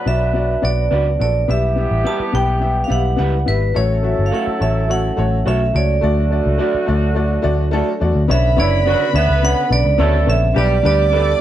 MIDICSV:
0, 0, Header, 1, 9, 480
1, 0, Start_track
1, 0, Tempo, 567108
1, 1256, Time_signature, 4, 2, 24, 8
1, 9657, End_track
2, 0, Start_track
2, 0, Title_t, "Violin section"
2, 0, Program_c, 0, 48
2, 7016, Note_on_c, 0, 71, 98
2, 7019, Note_on_c, 0, 83, 113
2, 8662, Note_off_c, 0, 71, 0
2, 8664, Note_off_c, 0, 83, 0
2, 8934, Note_on_c, 0, 74, 94
2, 8937, Note_on_c, 0, 86, 104
2, 9657, Note_off_c, 0, 74, 0
2, 9657, Note_off_c, 0, 86, 0
2, 9657, End_track
3, 0, Start_track
3, 0, Title_t, "Vibraphone"
3, 0, Program_c, 1, 11
3, 64, Note_on_c, 1, 76, 93
3, 549, Note_on_c, 1, 74, 87
3, 554, Note_off_c, 1, 76, 0
3, 1018, Note_off_c, 1, 74, 0
3, 1028, Note_on_c, 1, 74, 84
3, 1270, Note_off_c, 1, 74, 0
3, 1276, Note_on_c, 1, 76, 89
3, 1714, Note_off_c, 1, 76, 0
3, 1749, Note_on_c, 1, 81, 84
3, 1988, Note_on_c, 1, 79, 93
3, 1991, Note_off_c, 1, 81, 0
3, 2375, Note_off_c, 1, 79, 0
3, 2405, Note_on_c, 1, 77, 66
3, 2461, Note_off_c, 1, 77, 0
3, 2469, Note_on_c, 1, 78, 96
3, 2911, Note_off_c, 1, 78, 0
3, 2946, Note_on_c, 1, 71, 84
3, 3185, Note_on_c, 1, 73, 90
3, 3190, Note_off_c, 1, 71, 0
3, 3607, Note_on_c, 1, 77, 67
3, 3616, Note_off_c, 1, 73, 0
3, 3663, Note_off_c, 1, 77, 0
3, 3678, Note_on_c, 1, 78, 77
3, 3910, Note_on_c, 1, 76, 78
3, 3916, Note_off_c, 1, 78, 0
3, 4129, Note_off_c, 1, 76, 0
3, 4155, Note_on_c, 1, 78, 86
3, 4638, Note_on_c, 1, 76, 88
3, 4643, Note_off_c, 1, 78, 0
3, 4874, Note_on_c, 1, 74, 87
3, 4877, Note_off_c, 1, 76, 0
3, 6754, Note_off_c, 1, 74, 0
3, 7035, Note_on_c, 1, 76, 99
3, 7252, Note_off_c, 1, 76, 0
3, 7277, Note_on_c, 1, 74, 99
3, 7716, Note_off_c, 1, 74, 0
3, 7750, Note_on_c, 1, 76, 100
3, 7992, Note_off_c, 1, 76, 0
3, 7996, Note_on_c, 1, 78, 107
3, 8212, Note_off_c, 1, 78, 0
3, 8232, Note_on_c, 1, 74, 96
3, 8715, Note_on_c, 1, 76, 100
3, 8719, Note_off_c, 1, 74, 0
3, 8930, Note_off_c, 1, 76, 0
3, 8955, Note_on_c, 1, 74, 100
3, 9184, Note_off_c, 1, 74, 0
3, 9194, Note_on_c, 1, 74, 97
3, 9632, Note_off_c, 1, 74, 0
3, 9657, End_track
4, 0, Start_track
4, 0, Title_t, "Clean electric guitar"
4, 0, Program_c, 2, 27
4, 768, Note_on_c, 2, 62, 69
4, 776, Note_on_c, 2, 66, 70
4, 781, Note_on_c, 2, 71, 82
4, 891, Note_off_c, 2, 62, 0
4, 895, Note_off_c, 2, 66, 0
4, 898, Note_off_c, 2, 71, 0
4, 1733, Note_on_c, 2, 64, 82
4, 1740, Note_on_c, 2, 67, 84
4, 1747, Note_on_c, 2, 71, 88
4, 1854, Note_off_c, 2, 64, 0
4, 1858, Note_off_c, 2, 67, 0
4, 1861, Note_off_c, 2, 71, 0
4, 2694, Note_on_c, 2, 64, 78
4, 2701, Note_on_c, 2, 67, 82
4, 2709, Note_on_c, 2, 71, 95
4, 2816, Note_off_c, 2, 64, 0
4, 2819, Note_off_c, 2, 67, 0
4, 2823, Note_off_c, 2, 71, 0
4, 3652, Note_on_c, 2, 66, 70
4, 3659, Note_on_c, 2, 69, 73
4, 3666, Note_on_c, 2, 73, 84
4, 3775, Note_off_c, 2, 66, 0
4, 3779, Note_off_c, 2, 69, 0
4, 3782, Note_off_c, 2, 73, 0
4, 4619, Note_on_c, 2, 66, 78
4, 4626, Note_on_c, 2, 69, 85
4, 4632, Note_on_c, 2, 73, 82
4, 4739, Note_off_c, 2, 66, 0
4, 4743, Note_off_c, 2, 69, 0
4, 4746, Note_off_c, 2, 73, 0
4, 5574, Note_on_c, 2, 66, 77
4, 5583, Note_on_c, 2, 69, 78
4, 5588, Note_on_c, 2, 74, 94
4, 5697, Note_off_c, 2, 66, 0
4, 5702, Note_off_c, 2, 69, 0
4, 5704, Note_off_c, 2, 74, 0
4, 6539, Note_on_c, 2, 66, 77
4, 6549, Note_on_c, 2, 69, 85
4, 6553, Note_on_c, 2, 74, 85
4, 6660, Note_off_c, 2, 66, 0
4, 6665, Note_off_c, 2, 69, 0
4, 6667, Note_off_c, 2, 74, 0
4, 7498, Note_on_c, 2, 62, 77
4, 7506, Note_on_c, 2, 66, 81
4, 7511, Note_on_c, 2, 73, 93
4, 7619, Note_off_c, 2, 62, 0
4, 7623, Note_off_c, 2, 66, 0
4, 7625, Note_off_c, 2, 73, 0
4, 8454, Note_on_c, 2, 62, 78
4, 8462, Note_on_c, 2, 66, 72
4, 8469, Note_on_c, 2, 73, 82
4, 8576, Note_off_c, 2, 62, 0
4, 8580, Note_off_c, 2, 66, 0
4, 8583, Note_off_c, 2, 73, 0
4, 9410, Note_on_c, 2, 62, 84
4, 9417, Note_on_c, 2, 67, 82
4, 9423, Note_on_c, 2, 71, 89
4, 9532, Note_off_c, 2, 62, 0
4, 9536, Note_off_c, 2, 67, 0
4, 9539, Note_off_c, 2, 71, 0
4, 9657, End_track
5, 0, Start_track
5, 0, Title_t, "Upright piano"
5, 0, Program_c, 3, 0
5, 49, Note_on_c, 3, 59, 67
5, 56, Note_on_c, 3, 66, 66
5, 64, Note_on_c, 3, 74, 77
5, 213, Note_off_c, 3, 59, 0
5, 217, Note_off_c, 3, 66, 0
5, 221, Note_off_c, 3, 74, 0
5, 281, Note_on_c, 3, 59, 70
5, 290, Note_on_c, 3, 66, 61
5, 300, Note_on_c, 3, 74, 74
5, 449, Note_off_c, 3, 59, 0
5, 454, Note_off_c, 3, 66, 0
5, 459, Note_off_c, 3, 74, 0
5, 524, Note_on_c, 3, 59, 79
5, 530, Note_on_c, 3, 66, 79
5, 535, Note_on_c, 3, 74, 94
5, 691, Note_off_c, 3, 59, 0
5, 694, Note_off_c, 3, 66, 0
5, 696, Note_off_c, 3, 74, 0
5, 767, Note_on_c, 3, 59, 83
5, 776, Note_on_c, 3, 66, 72
5, 784, Note_on_c, 3, 74, 92
5, 933, Note_off_c, 3, 59, 0
5, 937, Note_off_c, 3, 66, 0
5, 941, Note_off_c, 3, 74, 0
5, 1010, Note_on_c, 3, 59, 61
5, 1016, Note_on_c, 3, 66, 64
5, 1024, Note_on_c, 3, 69, 71
5, 1174, Note_off_c, 3, 59, 0
5, 1177, Note_off_c, 3, 66, 0
5, 1181, Note_off_c, 3, 69, 0
5, 1252, Note_on_c, 3, 59, 80
5, 1255, Note_on_c, 3, 67, 77
5, 1264, Note_on_c, 3, 76, 97
5, 1415, Note_off_c, 3, 59, 0
5, 1417, Note_off_c, 3, 67, 0
5, 1421, Note_off_c, 3, 76, 0
5, 1487, Note_on_c, 3, 59, 69
5, 1497, Note_on_c, 3, 67, 64
5, 1506, Note_on_c, 3, 76, 74
5, 1653, Note_off_c, 3, 59, 0
5, 1658, Note_off_c, 3, 67, 0
5, 1662, Note_off_c, 3, 76, 0
5, 1728, Note_on_c, 3, 59, 69
5, 1734, Note_on_c, 3, 67, 63
5, 1743, Note_on_c, 3, 76, 73
5, 1894, Note_off_c, 3, 59, 0
5, 1897, Note_off_c, 3, 67, 0
5, 1901, Note_off_c, 3, 76, 0
5, 1967, Note_on_c, 3, 59, 73
5, 1976, Note_on_c, 3, 67, 62
5, 1985, Note_on_c, 3, 71, 81
5, 2133, Note_off_c, 3, 59, 0
5, 2138, Note_off_c, 3, 67, 0
5, 2142, Note_off_c, 3, 71, 0
5, 2203, Note_on_c, 3, 59, 68
5, 2208, Note_on_c, 3, 67, 62
5, 2215, Note_on_c, 3, 76, 80
5, 2372, Note_off_c, 3, 59, 0
5, 2374, Note_off_c, 3, 67, 0
5, 2378, Note_off_c, 3, 76, 0
5, 2437, Note_on_c, 3, 59, 86
5, 2450, Note_on_c, 3, 67, 77
5, 2454, Note_on_c, 3, 76, 89
5, 2609, Note_off_c, 3, 59, 0
5, 2615, Note_off_c, 3, 67, 0
5, 2618, Note_off_c, 3, 76, 0
5, 2678, Note_on_c, 3, 59, 85
5, 2690, Note_on_c, 3, 67, 75
5, 2697, Note_on_c, 3, 78, 101
5, 2850, Note_off_c, 3, 59, 0
5, 2855, Note_off_c, 3, 67, 0
5, 2859, Note_off_c, 3, 78, 0
5, 2927, Note_on_c, 3, 59, 71
5, 2934, Note_on_c, 3, 67, 62
5, 2944, Note_on_c, 3, 76, 81
5, 3094, Note_off_c, 3, 59, 0
5, 3098, Note_off_c, 3, 67, 0
5, 3103, Note_off_c, 3, 76, 0
5, 3168, Note_on_c, 3, 57, 83
5, 3174, Note_on_c, 3, 66, 82
5, 3182, Note_on_c, 3, 73, 97
5, 3335, Note_off_c, 3, 57, 0
5, 3338, Note_off_c, 3, 66, 0
5, 3342, Note_off_c, 3, 73, 0
5, 3408, Note_on_c, 3, 57, 70
5, 3416, Note_on_c, 3, 66, 66
5, 3424, Note_on_c, 3, 76, 73
5, 3575, Note_off_c, 3, 57, 0
5, 3579, Note_off_c, 3, 66, 0
5, 3583, Note_off_c, 3, 76, 0
5, 3650, Note_on_c, 3, 57, 69
5, 3658, Note_on_c, 3, 66, 67
5, 3663, Note_on_c, 3, 73, 74
5, 3816, Note_off_c, 3, 57, 0
5, 3820, Note_off_c, 3, 66, 0
5, 3823, Note_off_c, 3, 73, 0
5, 3890, Note_on_c, 3, 57, 76
5, 3897, Note_on_c, 3, 66, 62
5, 3905, Note_on_c, 3, 73, 78
5, 4056, Note_off_c, 3, 57, 0
5, 4060, Note_off_c, 3, 66, 0
5, 4064, Note_off_c, 3, 73, 0
5, 4132, Note_on_c, 3, 57, 70
5, 4142, Note_on_c, 3, 66, 68
5, 4149, Note_on_c, 3, 73, 82
5, 4298, Note_off_c, 3, 57, 0
5, 4303, Note_off_c, 3, 66, 0
5, 4306, Note_off_c, 3, 73, 0
5, 4374, Note_on_c, 3, 57, 86
5, 4381, Note_on_c, 3, 66, 81
5, 4389, Note_on_c, 3, 73, 92
5, 4539, Note_off_c, 3, 57, 0
5, 4542, Note_off_c, 3, 66, 0
5, 4546, Note_off_c, 3, 73, 0
5, 4617, Note_on_c, 3, 57, 84
5, 4626, Note_on_c, 3, 66, 83
5, 4632, Note_on_c, 3, 73, 98
5, 4780, Note_off_c, 3, 57, 0
5, 4785, Note_off_c, 3, 66, 0
5, 4788, Note_off_c, 3, 73, 0
5, 4855, Note_on_c, 3, 57, 70
5, 4863, Note_on_c, 3, 66, 60
5, 4875, Note_on_c, 3, 73, 76
5, 5020, Note_off_c, 3, 57, 0
5, 5024, Note_off_c, 3, 66, 0
5, 5030, Note_off_c, 3, 73, 0
5, 5088, Note_on_c, 3, 57, 93
5, 5097, Note_on_c, 3, 66, 83
5, 5108, Note_on_c, 3, 74, 108
5, 5256, Note_off_c, 3, 57, 0
5, 5260, Note_off_c, 3, 66, 0
5, 5266, Note_off_c, 3, 74, 0
5, 5334, Note_on_c, 3, 57, 67
5, 5342, Note_on_c, 3, 66, 62
5, 5349, Note_on_c, 3, 74, 77
5, 5499, Note_off_c, 3, 57, 0
5, 5503, Note_off_c, 3, 66, 0
5, 5507, Note_off_c, 3, 74, 0
5, 5568, Note_on_c, 3, 57, 88
5, 5577, Note_on_c, 3, 66, 77
5, 5581, Note_on_c, 3, 74, 96
5, 5736, Note_off_c, 3, 57, 0
5, 5741, Note_off_c, 3, 66, 0
5, 5743, Note_off_c, 3, 74, 0
5, 5808, Note_on_c, 3, 57, 88
5, 5814, Note_on_c, 3, 66, 73
5, 5824, Note_on_c, 3, 74, 98
5, 5976, Note_off_c, 3, 57, 0
5, 5979, Note_off_c, 3, 66, 0
5, 5984, Note_off_c, 3, 74, 0
5, 6048, Note_on_c, 3, 57, 83
5, 6057, Note_on_c, 3, 66, 76
5, 6062, Note_on_c, 3, 74, 93
5, 6216, Note_off_c, 3, 57, 0
5, 6221, Note_off_c, 3, 66, 0
5, 6223, Note_off_c, 3, 74, 0
5, 6282, Note_on_c, 3, 57, 100
5, 6289, Note_on_c, 3, 66, 99
5, 6296, Note_on_c, 3, 74, 118
5, 6453, Note_off_c, 3, 57, 0
5, 6457, Note_off_c, 3, 66, 0
5, 6460, Note_off_c, 3, 74, 0
5, 6528, Note_on_c, 3, 57, 110
5, 6538, Note_on_c, 3, 66, 95
5, 6544, Note_on_c, 3, 69, 117
5, 6696, Note_off_c, 3, 57, 0
5, 6701, Note_off_c, 3, 66, 0
5, 6704, Note_off_c, 3, 69, 0
5, 6772, Note_on_c, 3, 57, 78
5, 6780, Note_on_c, 3, 66, 78
5, 6783, Note_on_c, 3, 74, 94
5, 6938, Note_off_c, 3, 57, 0
5, 6942, Note_off_c, 3, 66, 0
5, 6944, Note_off_c, 3, 74, 0
5, 7010, Note_on_c, 3, 59, 92
5, 7018, Note_on_c, 3, 62, 88
5, 7022, Note_on_c, 3, 73, 101
5, 7177, Note_off_c, 3, 59, 0
5, 7181, Note_off_c, 3, 62, 0
5, 7183, Note_off_c, 3, 73, 0
5, 7249, Note_on_c, 3, 59, 98
5, 7258, Note_on_c, 3, 62, 78
5, 7263, Note_on_c, 3, 73, 105
5, 7416, Note_off_c, 3, 59, 0
5, 7421, Note_off_c, 3, 62, 0
5, 7423, Note_off_c, 3, 73, 0
5, 7490, Note_on_c, 3, 59, 71
5, 7498, Note_on_c, 3, 62, 69
5, 7507, Note_on_c, 3, 71, 82
5, 7656, Note_off_c, 3, 59, 0
5, 7661, Note_off_c, 3, 62, 0
5, 7665, Note_off_c, 3, 71, 0
5, 7728, Note_on_c, 3, 59, 72
5, 7735, Note_on_c, 3, 62, 73
5, 7743, Note_on_c, 3, 73, 80
5, 7896, Note_off_c, 3, 59, 0
5, 7899, Note_off_c, 3, 62, 0
5, 7903, Note_off_c, 3, 73, 0
5, 7977, Note_on_c, 3, 59, 74
5, 7984, Note_on_c, 3, 62, 69
5, 7991, Note_on_c, 3, 73, 76
5, 8140, Note_off_c, 3, 59, 0
5, 8143, Note_off_c, 3, 62, 0
5, 8147, Note_off_c, 3, 73, 0
5, 8210, Note_on_c, 3, 59, 69
5, 8216, Note_on_c, 3, 62, 67
5, 8223, Note_on_c, 3, 74, 77
5, 8376, Note_off_c, 3, 59, 0
5, 8379, Note_off_c, 3, 62, 0
5, 8383, Note_off_c, 3, 74, 0
5, 8446, Note_on_c, 3, 59, 98
5, 8452, Note_on_c, 3, 62, 87
5, 8462, Note_on_c, 3, 73, 100
5, 8614, Note_off_c, 3, 59, 0
5, 8616, Note_off_c, 3, 62, 0
5, 8621, Note_off_c, 3, 73, 0
5, 8689, Note_on_c, 3, 59, 78
5, 8695, Note_on_c, 3, 62, 63
5, 8702, Note_on_c, 3, 73, 82
5, 8855, Note_off_c, 3, 59, 0
5, 8858, Note_off_c, 3, 62, 0
5, 8861, Note_off_c, 3, 73, 0
5, 8924, Note_on_c, 3, 55, 88
5, 8931, Note_on_c, 3, 62, 87
5, 8940, Note_on_c, 3, 71, 103
5, 9092, Note_off_c, 3, 55, 0
5, 9096, Note_off_c, 3, 62, 0
5, 9100, Note_off_c, 3, 71, 0
5, 9167, Note_on_c, 3, 55, 92
5, 9172, Note_on_c, 3, 62, 89
5, 9185, Note_on_c, 3, 71, 112
5, 9333, Note_off_c, 3, 55, 0
5, 9336, Note_off_c, 3, 62, 0
5, 9342, Note_off_c, 3, 71, 0
5, 9407, Note_on_c, 3, 55, 73
5, 9413, Note_on_c, 3, 62, 71
5, 9421, Note_on_c, 3, 71, 81
5, 9573, Note_off_c, 3, 55, 0
5, 9576, Note_off_c, 3, 62, 0
5, 9580, Note_off_c, 3, 71, 0
5, 9657, End_track
6, 0, Start_track
6, 0, Title_t, "Horn section"
6, 0, Program_c, 4, 61
6, 0, Note_on_c, 4, 54, 81
6, 0, Note_on_c, 4, 62, 76
6, 0, Note_on_c, 4, 71, 90
6, 983, Note_off_c, 4, 54, 0
6, 985, Note_off_c, 4, 62, 0
6, 985, Note_off_c, 4, 71, 0
6, 1255, Note_on_c, 4, 67, 90
6, 1257, Note_on_c, 4, 59, 84
6, 1259, Note_on_c, 4, 52, 82
6, 2905, Note_off_c, 4, 67, 0
6, 2906, Note_off_c, 4, 59, 0
6, 2907, Note_off_c, 4, 52, 0
6, 3174, Note_on_c, 4, 54, 85
6, 3175, Note_on_c, 4, 64, 80
6, 3175, Note_on_c, 4, 69, 94
6, 4825, Note_off_c, 4, 54, 0
6, 4826, Note_off_c, 4, 64, 0
6, 4826, Note_off_c, 4, 69, 0
6, 5103, Note_on_c, 4, 57, 92
6, 5105, Note_on_c, 4, 50, 86
6, 5106, Note_on_c, 4, 66, 99
6, 6749, Note_off_c, 4, 57, 0
6, 6750, Note_off_c, 4, 50, 0
6, 6750, Note_off_c, 4, 66, 0
6, 7266, Note_on_c, 4, 64, 92
6, 7269, Note_on_c, 4, 52, 83
6, 7456, Note_off_c, 4, 64, 0
6, 7458, Note_off_c, 4, 52, 0
6, 7510, Note_on_c, 4, 66, 104
6, 7511, Note_on_c, 4, 54, 94
6, 7698, Note_off_c, 4, 66, 0
6, 7699, Note_off_c, 4, 54, 0
6, 7752, Note_on_c, 4, 59, 87
6, 7755, Note_on_c, 4, 71, 104
6, 8197, Note_off_c, 4, 59, 0
6, 8199, Note_off_c, 4, 71, 0
6, 8461, Note_on_c, 4, 57, 101
6, 8462, Note_on_c, 4, 69, 105
6, 8798, Note_off_c, 4, 57, 0
6, 8798, Note_off_c, 4, 69, 0
6, 8939, Note_on_c, 4, 67, 127
6, 8942, Note_on_c, 4, 55, 114
6, 9130, Note_off_c, 4, 67, 0
6, 9132, Note_off_c, 4, 55, 0
6, 9184, Note_on_c, 4, 55, 86
6, 9187, Note_on_c, 4, 67, 100
6, 9373, Note_off_c, 4, 55, 0
6, 9375, Note_off_c, 4, 67, 0
6, 9420, Note_on_c, 4, 57, 84
6, 9424, Note_on_c, 4, 69, 90
6, 9610, Note_off_c, 4, 57, 0
6, 9613, Note_off_c, 4, 69, 0
6, 9657, End_track
7, 0, Start_track
7, 0, Title_t, "Tonewheel organ"
7, 0, Program_c, 5, 16
7, 0, Note_on_c, 5, 54, 64
7, 0, Note_on_c, 5, 59, 51
7, 0, Note_on_c, 5, 62, 66
7, 1239, Note_off_c, 5, 54, 0
7, 1240, Note_off_c, 5, 62, 0
7, 1256, Note_on_c, 5, 64, 67
7, 1258, Note_on_c, 5, 55, 65
7, 3149, Note_off_c, 5, 59, 0
7, 3160, Note_off_c, 5, 64, 0
7, 3161, Note_off_c, 5, 55, 0
7, 3185, Note_on_c, 5, 54, 64
7, 3186, Note_on_c, 5, 61, 69
7, 3188, Note_on_c, 5, 57, 62
7, 5086, Note_off_c, 5, 61, 0
7, 5104, Note_on_c, 5, 62, 72
7, 6991, Note_off_c, 5, 54, 0
7, 6992, Note_off_c, 5, 57, 0
7, 7004, Note_off_c, 5, 62, 0
7, 7025, Note_on_c, 5, 49, 70
7, 7025, Note_on_c, 5, 50, 70
7, 7026, Note_on_c, 5, 59, 56
7, 8921, Note_off_c, 5, 49, 0
7, 8921, Note_off_c, 5, 50, 0
7, 8939, Note_on_c, 5, 62, 77
7, 8941, Note_on_c, 5, 55, 73
7, 9657, Note_off_c, 5, 55, 0
7, 9657, Note_off_c, 5, 59, 0
7, 9657, Note_off_c, 5, 62, 0
7, 9657, End_track
8, 0, Start_track
8, 0, Title_t, "Picked electric bass"
8, 0, Program_c, 6, 34
8, 54, Note_on_c, 6, 35, 83
8, 468, Note_off_c, 6, 35, 0
8, 537, Note_on_c, 6, 35, 84
8, 743, Note_off_c, 6, 35, 0
8, 776, Note_on_c, 6, 37, 82
8, 983, Note_off_c, 6, 37, 0
8, 1020, Note_on_c, 6, 34, 81
8, 1225, Note_off_c, 6, 34, 0
8, 1260, Note_on_c, 6, 35, 103
8, 1569, Note_off_c, 6, 35, 0
8, 1617, Note_on_c, 6, 33, 84
8, 1721, Note_off_c, 6, 33, 0
8, 1978, Note_on_c, 6, 35, 82
8, 2392, Note_off_c, 6, 35, 0
8, 2460, Note_on_c, 6, 35, 90
8, 2666, Note_off_c, 6, 35, 0
8, 2701, Note_on_c, 6, 37, 91
8, 2907, Note_off_c, 6, 37, 0
8, 2944, Note_on_c, 6, 32, 79
8, 3149, Note_off_c, 6, 32, 0
8, 3187, Note_on_c, 6, 33, 107
8, 3494, Note_off_c, 6, 33, 0
8, 3545, Note_on_c, 6, 31, 84
8, 3646, Note_off_c, 6, 31, 0
8, 3904, Note_on_c, 6, 33, 88
8, 4317, Note_off_c, 6, 33, 0
8, 4386, Note_on_c, 6, 33, 87
8, 4591, Note_off_c, 6, 33, 0
8, 4627, Note_on_c, 6, 35, 83
8, 4831, Note_off_c, 6, 35, 0
8, 4866, Note_on_c, 6, 37, 86
8, 5071, Note_off_c, 6, 37, 0
8, 5105, Note_on_c, 6, 38, 113
8, 5414, Note_off_c, 6, 38, 0
8, 5467, Note_on_c, 6, 37, 90
8, 5568, Note_off_c, 6, 37, 0
8, 5829, Note_on_c, 6, 38, 88
8, 6239, Note_off_c, 6, 38, 0
8, 6302, Note_on_c, 6, 38, 79
8, 6612, Note_off_c, 6, 38, 0
8, 6786, Note_on_c, 6, 40, 88
8, 6887, Note_off_c, 6, 40, 0
8, 6901, Note_on_c, 6, 38, 88
8, 7005, Note_off_c, 6, 38, 0
8, 7022, Note_on_c, 6, 35, 115
8, 7259, Note_on_c, 6, 30, 93
8, 7272, Note_off_c, 6, 35, 0
8, 7570, Note_off_c, 6, 30, 0
8, 7739, Note_on_c, 6, 38, 102
8, 7843, Note_off_c, 6, 38, 0
8, 7863, Note_on_c, 6, 37, 78
8, 8068, Note_off_c, 6, 37, 0
8, 8217, Note_on_c, 6, 35, 94
8, 8321, Note_off_c, 6, 35, 0
8, 8341, Note_on_c, 6, 37, 92
8, 8444, Note_off_c, 6, 37, 0
8, 8456, Note_on_c, 6, 38, 95
8, 8664, Note_off_c, 6, 38, 0
8, 8699, Note_on_c, 6, 34, 94
8, 8905, Note_off_c, 6, 34, 0
8, 8940, Note_on_c, 6, 35, 112
8, 9145, Note_off_c, 6, 35, 0
8, 9180, Note_on_c, 6, 38, 98
8, 9591, Note_off_c, 6, 38, 0
8, 9657, End_track
9, 0, Start_track
9, 0, Title_t, "Muted picked electric bass strokes"
9, 1861, Note_on_c, 9, 29, 43
9, 1945, Note_off_c, 9, 29, 0
9, 3786, Note_on_c, 9, 29, 44
9, 3871, Note_off_c, 9, 29, 0
9, 5710, Note_on_c, 9, 29, 41
9, 5794, Note_off_c, 9, 29, 0
9, 9657, End_track
0, 0, End_of_file